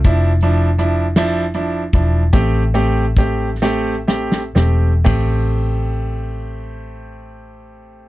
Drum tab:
RD |------------|------------|b-----------|
HH |x-x-x-x-x-x-|x-x-x-------|------------|
SD |------o-----|------o-ooo-|------------|
FT |------------|------------|o-----------|
BD |o---------o-|o---o-------|o-----------|